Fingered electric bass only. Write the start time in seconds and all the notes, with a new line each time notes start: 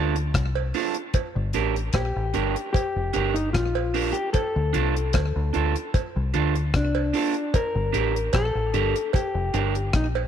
Already playing: D2
0.35 C2
1.36 G1
1.55 A1
1.94 A#1
2.16 A1
2.35 G1
2.96 F1
3.15 G1
3.55 A#1
4.56 D2
4.76 C2
5.14 D2
5.36 D2
5.56 D2
6.16 C2
6.35 D2
6.74 C2
7.75 G1
7.95 A1
8.34 A#1
8.55 A1
8.74 G1
9.35 F1
9.54 G1
9.94 A#1